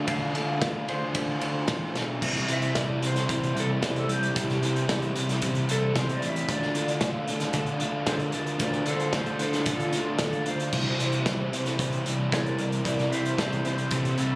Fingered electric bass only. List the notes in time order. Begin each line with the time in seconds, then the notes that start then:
0.08 D2
0.33 D3
0.62 D2
0.88 D3
1.01 D2
1.15 D3
1.41 D2
1.68 A1
1.95 B1
2.23 C2
2.49 C3
2.76 C2
3.01 C3
3.14 C2
3.29 C3
3.55 C2
3.83 C3
4.08 C2
4.36 C2
4.62 C3
4.90 C2
5.16 C3
5.29 C2
5.43 C3
5.70 C2
5.95 C3
6.23 A1
6.48 D2
6.75 D3
7.01 D2
7.29 D3
7.42 D2
7.54 D3
7.81 D2
8.07 D3
8.34 D2
8.60 D2
8.87 D3
9.13 D2
9.39 D3
9.53 D2
9.66 D3
9.93 D2
10.20 D3
10.47 D2
10.73 C2
10.99 C3
11.25 C2
11.52 C3
11.66 C2
11.79 C3
12.05 C2
12.33 C3
12.59 C2
12.85 C2
13.12 C3
13.39 C2
13.65 C3
13.78 C2
13.91 C3
14.19 C2